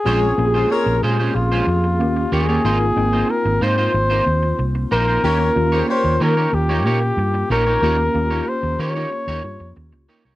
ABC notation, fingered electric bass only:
X:1
M:4/4
L:1/16
Q:1/4=93
K:Ebmix
V:1 name="Fingered electric bass" clef=bass
B,,,2 B,,,2 z B,,, B,,2 B,,,2 F,,2 E,,2 E,,2 | A,,,2 A,,,2 z A,,, A,,2 A,,,2 E,,2 C,,2 B,,,2 | E,,2 E,,2 z E,, E,2 E,,2 B,,2 G,,2 B,,,2 | E,,2 E,,2 z E,, E,2 z E,, G,, F,, E,, D,, z C,, |]